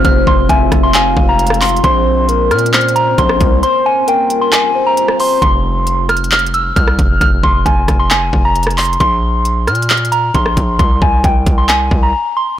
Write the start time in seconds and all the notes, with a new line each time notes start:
Already playing: G#3 C4 F4
0.05 F1 C5 F6, kick, closed hi-hat
0.27 F1 C6, kick
0.49 F1 E5 G#5, kick, closed hi-hat
0.72 F1, kick, cross-stick, closed hi-hat
0.83 C6
0.94 F5 G#5, clap, closed hi-hat
1.17 F1, kick
1.29 A#5
1.39 closed hi-hat
1.47 cross-stick, closed hi-hat
1.54 closed hi-hat
1.61 C6, clap, closed hi-hat, open hi-hat
1.69 closed hi-hat
1.76 closed hi-hat
1.84 A#1 A#3 C#4 C5 C6, kick, closed hi-hat
2.29 A#4, closed hi-hat
2.51 A#2 F6, cross-stick, closed hi-hat
2.59 closed hi-hat
2.66 closed hi-hat
2.73 C5 F6, clap, closed hi-hat
2.81 closed hi-hat
2.88 closed hi-hat
2.96 A#5, closed hi-hat
3.18 A#1 C6, kick, closed hi-hat
3.29 cross-stick
3.41 C2, kick, closed hi-hat
3.63 G3 F4 C5 C6, closed hi-hat
3.86 G#5
4.07 A#4 G5, closed hi-hat
4.30 closed hi-hat
4.41 C6
4.52 G#5, clap, closed hi-hat
4.75 C5
4.87 A#5
4.97 closed hi-hat
5.08 cross-stick
5.20 C5 C6, open hi-hat
5.42 F1 C6, kick, closed hi-hat
5.87 closed hi-hat
6.09 F6, cross-stick, closed hi-hat
6.17 closed hi-hat
6.24 closed hi-hat
6.32 F6, clap, closed hi-hat
6.39 closed hi-hat
6.46 closed hi-hat
6.54 E6, closed hi-hat
6.76 C2 F6, kick, closed hi-hat
6.88 cross-stick
6.99 F1, kick, closed hi-hat
7.21 F1 F6, kick, closed hi-hat
7.43 F1 C6, kick
7.66 F1 G#5, kick, closed hi-hat
7.88 F1, kick, cross-stick, closed hi-hat
7.99 C6
8.11 G#5, clap, closed hi-hat
8.33 F1, kick
8.45 A#5
8.55 closed hi-hat
8.63 cross-stick, closed hi-hat
8.71 closed hi-hat
8.78 C6, clap, closed hi-hat, open hi-hat
8.85 closed hi-hat
8.93 closed hi-hat
9.00 A#1 C6, kick, closed hi-hat
9.45 closed hi-hat
9.67 A#2 F6, cross-stick, closed hi-hat
9.75 closed hi-hat
9.82 closed hi-hat
9.90 F6, clap, closed hi-hat
9.97 closed hi-hat
10.05 closed hi-hat
10.12 A#5, closed hi-hat
10.34 A#1 C6, kick, closed hi-hat
10.46 cross-stick
10.57 A#1, kick, closed hi-hat
10.79 C2 C6, kick, closed hi-hat
11.02 C2 G#5, kick
11.24 C2 G5, kick, closed hi-hat
11.46 C2, kick, closed hi-hat
11.58 C6
11.69 G#5, clap, closed hi-hat
11.91 C2, kick
12.03 A#5
12.37 C6